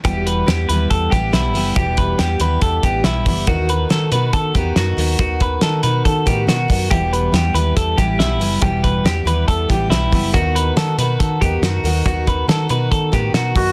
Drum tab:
HH |xxxxxxxo|xxxxxxxo|xxxxxxxo|xxxxxxxo|
SD |--o---o-|--o---o-|--o---o-|--o--oo-|
BD |o---oo--|oo--oo-o|o---oo--|oo--oo-o|

HH |xxxxxxxo|xxxxxxxo|xxxxxxxo|xxxxxxxo|
SD |--o--oo-|--o---o-|--o---o-|--o--oo-|
BD |o---oo--|oo--oo-o|o---oo--|oo--oo-o|